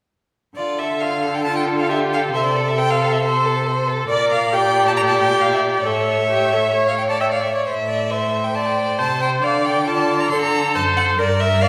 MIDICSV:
0, 0, Header, 1, 5, 480
1, 0, Start_track
1, 0, Tempo, 440852
1, 621, Time_signature, 4, 2, 24, 8
1, 5411, Tempo, 447427
1, 9731, Tempo, 437956
1, 12678, End_track
2, 0, Start_track
2, 0, Title_t, "Violin"
2, 0, Program_c, 0, 40
2, 615, Note_on_c, 0, 74, 47
2, 855, Note_on_c, 0, 76, 45
2, 871, Note_off_c, 0, 74, 0
2, 1094, Note_on_c, 0, 77, 46
2, 1110, Note_off_c, 0, 76, 0
2, 1465, Note_on_c, 0, 79, 41
2, 1482, Note_off_c, 0, 77, 0
2, 1564, Note_off_c, 0, 79, 0
2, 1571, Note_on_c, 0, 81, 53
2, 1696, Note_off_c, 0, 81, 0
2, 1704, Note_on_c, 0, 79, 43
2, 1791, Note_off_c, 0, 79, 0
2, 1950, Note_on_c, 0, 77, 41
2, 2067, Note_off_c, 0, 77, 0
2, 2073, Note_on_c, 0, 76, 45
2, 2160, Note_off_c, 0, 76, 0
2, 2325, Note_on_c, 0, 77, 45
2, 2412, Note_off_c, 0, 77, 0
2, 2555, Note_on_c, 0, 76, 55
2, 2669, Note_off_c, 0, 76, 0
2, 2674, Note_on_c, 0, 74, 42
2, 2919, Note_on_c, 0, 76, 47
2, 2935, Note_off_c, 0, 74, 0
2, 3029, Note_on_c, 0, 79, 66
2, 3045, Note_off_c, 0, 76, 0
2, 3162, Note_on_c, 0, 77, 44
2, 3179, Note_off_c, 0, 79, 0
2, 3397, Note_on_c, 0, 76, 42
2, 3414, Note_off_c, 0, 77, 0
2, 3507, Note_off_c, 0, 76, 0
2, 3514, Note_on_c, 0, 72, 47
2, 4211, Note_off_c, 0, 72, 0
2, 4459, Note_on_c, 0, 74, 70
2, 4681, Note_off_c, 0, 74, 0
2, 4702, Note_on_c, 0, 77, 56
2, 4942, Note_on_c, 0, 79, 60
2, 4958, Note_off_c, 0, 77, 0
2, 5296, Note_off_c, 0, 79, 0
2, 5306, Note_on_c, 0, 81, 54
2, 5351, Note_off_c, 0, 81, 0
2, 5406, Note_on_c, 0, 82, 65
2, 5455, Note_off_c, 0, 82, 0
2, 5529, Note_on_c, 0, 81, 51
2, 5639, Note_off_c, 0, 81, 0
2, 5645, Note_on_c, 0, 79, 59
2, 5883, Note_on_c, 0, 77, 50
2, 5899, Note_off_c, 0, 79, 0
2, 5998, Note_off_c, 0, 77, 0
2, 6005, Note_on_c, 0, 76, 41
2, 6091, Note_off_c, 0, 76, 0
2, 6250, Note_on_c, 0, 74, 43
2, 6366, Note_on_c, 0, 76, 53
2, 6382, Note_off_c, 0, 74, 0
2, 7447, Note_off_c, 0, 76, 0
2, 7454, Note_on_c, 0, 77, 32
2, 7560, Note_off_c, 0, 77, 0
2, 7566, Note_on_c, 0, 79, 40
2, 7616, Note_off_c, 0, 79, 0
2, 7693, Note_on_c, 0, 81, 36
2, 7805, Note_off_c, 0, 81, 0
2, 7812, Note_on_c, 0, 79, 39
2, 7861, Note_off_c, 0, 79, 0
2, 7931, Note_on_c, 0, 77, 36
2, 8050, Note_off_c, 0, 77, 0
2, 8057, Note_on_c, 0, 76, 38
2, 8176, Note_off_c, 0, 76, 0
2, 8180, Note_on_c, 0, 74, 31
2, 8291, Note_off_c, 0, 74, 0
2, 8297, Note_on_c, 0, 72, 50
2, 8383, Note_off_c, 0, 72, 0
2, 8530, Note_on_c, 0, 74, 44
2, 8777, Note_on_c, 0, 76, 47
2, 8793, Note_off_c, 0, 74, 0
2, 9134, Note_on_c, 0, 79, 41
2, 9150, Note_off_c, 0, 76, 0
2, 9247, Note_on_c, 0, 81, 40
2, 9263, Note_off_c, 0, 79, 0
2, 9367, Note_on_c, 0, 79, 46
2, 9383, Note_off_c, 0, 81, 0
2, 9719, Note_off_c, 0, 79, 0
2, 9725, Note_on_c, 0, 81, 48
2, 9966, Note_off_c, 0, 81, 0
2, 9974, Note_on_c, 0, 79, 47
2, 10062, Note_off_c, 0, 79, 0
2, 10209, Note_on_c, 0, 77, 51
2, 10456, Note_on_c, 0, 79, 48
2, 10472, Note_off_c, 0, 77, 0
2, 10690, Note_on_c, 0, 81, 54
2, 10707, Note_off_c, 0, 79, 0
2, 11053, Note_on_c, 0, 82, 46
2, 11070, Note_off_c, 0, 81, 0
2, 11155, Note_off_c, 0, 82, 0
2, 11161, Note_on_c, 0, 84, 65
2, 11279, Note_off_c, 0, 84, 0
2, 11285, Note_on_c, 0, 82, 54
2, 11643, Note_off_c, 0, 82, 0
2, 11647, Note_on_c, 0, 81, 57
2, 11735, Note_off_c, 0, 81, 0
2, 11893, Note_on_c, 0, 78, 59
2, 11980, Note_off_c, 0, 78, 0
2, 12136, Note_on_c, 0, 74, 64
2, 12368, Note_on_c, 0, 76, 61
2, 12385, Note_off_c, 0, 74, 0
2, 12601, Note_on_c, 0, 77, 67
2, 12617, Note_off_c, 0, 76, 0
2, 12678, Note_off_c, 0, 77, 0
2, 12678, End_track
3, 0, Start_track
3, 0, Title_t, "Violin"
3, 0, Program_c, 1, 40
3, 623, Note_on_c, 1, 65, 27
3, 876, Note_on_c, 1, 69, 25
3, 892, Note_off_c, 1, 65, 0
3, 1108, Note_on_c, 1, 65, 27
3, 1125, Note_off_c, 1, 69, 0
3, 1339, Note_on_c, 1, 69, 24
3, 1355, Note_off_c, 1, 65, 0
3, 1573, Note_off_c, 1, 69, 0
3, 1580, Note_on_c, 1, 65, 27
3, 1813, Note_on_c, 1, 69, 25
3, 1830, Note_off_c, 1, 65, 0
3, 2063, Note_on_c, 1, 65, 27
3, 2079, Note_off_c, 1, 69, 0
3, 2321, Note_on_c, 1, 69, 31
3, 2337, Note_off_c, 1, 65, 0
3, 2533, Note_off_c, 1, 69, 0
3, 2540, Note_on_c, 1, 72, 31
3, 2787, Note_on_c, 1, 69, 27
3, 2803, Note_off_c, 1, 72, 0
3, 3023, Note_on_c, 1, 72, 30
3, 3039, Note_off_c, 1, 69, 0
3, 3273, Note_on_c, 1, 69, 28
3, 3290, Note_off_c, 1, 72, 0
3, 3510, Note_off_c, 1, 69, 0
3, 3524, Note_on_c, 1, 72, 36
3, 3756, Note_on_c, 1, 69, 32
3, 3772, Note_off_c, 1, 72, 0
3, 3984, Note_on_c, 1, 72, 37
3, 4000, Note_off_c, 1, 69, 0
3, 4223, Note_on_c, 1, 69, 38
3, 4240, Note_off_c, 1, 72, 0
3, 4450, Note_off_c, 1, 69, 0
3, 4456, Note_on_c, 1, 74, 42
3, 4901, Note_off_c, 1, 74, 0
3, 4944, Note_on_c, 1, 74, 38
3, 5400, Note_off_c, 1, 74, 0
3, 5407, Note_on_c, 1, 74, 43
3, 6349, Note_off_c, 1, 74, 0
3, 6372, Note_on_c, 1, 73, 36
3, 8049, Note_off_c, 1, 73, 0
3, 8308, Note_on_c, 1, 76, 30
3, 8777, Note_on_c, 1, 72, 29
3, 8794, Note_off_c, 1, 76, 0
3, 9245, Note_off_c, 1, 72, 0
3, 9252, Note_on_c, 1, 72, 32
3, 10194, Note_off_c, 1, 72, 0
3, 10210, Note_on_c, 1, 74, 31
3, 10685, Note_off_c, 1, 74, 0
3, 10695, Note_on_c, 1, 74, 31
3, 11179, Note_on_c, 1, 69, 37
3, 11195, Note_off_c, 1, 74, 0
3, 12123, Note_off_c, 1, 69, 0
3, 12130, Note_on_c, 1, 70, 43
3, 12611, Note_on_c, 1, 74, 43
3, 12628, Note_off_c, 1, 70, 0
3, 12678, Note_off_c, 1, 74, 0
3, 12678, End_track
4, 0, Start_track
4, 0, Title_t, "Viola"
4, 0, Program_c, 2, 41
4, 1577, Note_on_c, 2, 65, 35
4, 2059, Note_on_c, 2, 67, 36
4, 2076, Note_off_c, 2, 65, 0
4, 2541, Note_on_c, 2, 69, 42
4, 2557, Note_off_c, 2, 67, 0
4, 4444, Note_off_c, 2, 69, 0
4, 4450, Note_on_c, 2, 70, 49
4, 4928, Note_on_c, 2, 67, 53
4, 4944, Note_off_c, 2, 70, 0
4, 6355, Note_off_c, 2, 67, 0
4, 6362, Note_on_c, 2, 69, 39
4, 6793, Note_off_c, 2, 69, 0
4, 6840, Note_on_c, 2, 67, 37
4, 7087, Note_on_c, 2, 69, 30
4, 7103, Note_off_c, 2, 67, 0
4, 7311, Note_off_c, 2, 69, 0
4, 7317, Note_on_c, 2, 73, 38
4, 7679, Note_off_c, 2, 73, 0
4, 7697, Note_on_c, 2, 74, 33
4, 7808, Note_on_c, 2, 76, 38
4, 7824, Note_off_c, 2, 74, 0
4, 7925, Note_off_c, 2, 76, 0
4, 7931, Note_on_c, 2, 74, 32
4, 8169, Note_off_c, 2, 74, 0
4, 8175, Note_on_c, 2, 73, 25
4, 8295, Note_off_c, 2, 73, 0
4, 9254, Note_on_c, 2, 74, 44
4, 9723, Note_on_c, 2, 72, 35
4, 9740, Note_off_c, 2, 74, 0
4, 10211, Note_on_c, 2, 74, 38
4, 10228, Note_off_c, 2, 72, 0
4, 10685, Note_off_c, 2, 74, 0
4, 10692, Note_on_c, 2, 65, 38
4, 11165, Note_off_c, 2, 65, 0
4, 11186, Note_on_c, 2, 69, 45
4, 11659, Note_on_c, 2, 72, 48
4, 11675, Note_off_c, 2, 69, 0
4, 12129, Note_on_c, 2, 70, 49
4, 12146, Note_off_c, 2, 72, 0
4, 12611, Note_on_c, 2, 74, 53
4, 12627, Note_off_c, 2, 70, 0
4, 12678, Note_off_c, 2, 74, 0
4, 12678, End_track
5, 0, Start_track
5, 0, Title_t, "Cello"
5, 0, Program_c, 3, 42
5, 621, Note_on_c, 3, 50, 35
5, 2506, Note_off_c, 3, 50, 0
5, 2544, Note_on_c, 3, 48, 38
5, 4419, Note_off_c, 3, 48, 0
5, 4454, Note_on_c, 3, 46, 46
5, 6325, Note_off_c, 3, 46, 0
5, 6366, Note_on_c, 3, 45, 35
5, 8046, Note_off_c, 3, 45, 0
5, 8296, Note_on_c, 3, 45, 30
5, 9725, Note_on_c, 3, 48, 34
5, 9742, Note_off_c, 3, 45, 0
5, 10202, Note_off_c, 3, 48, 0
5, 10209, Note_on_c, 3, 50, 37
5, 11154, Note_off_c, 3, 50, 0
5, 11171, Note_on_c, 3, 50, 41
5, 11654, Note_on_c, 3, 42, 41
5, 11671, Note_off_c, 3, 50, 0
5, 12122, Note_off_c, 3, 42, 0
5, 12129, Note_on_c, 3, 43, 46
5, 12678, Note_off_c, 3, 43, 0
5, 12678, End_track
0, 0, End_of_file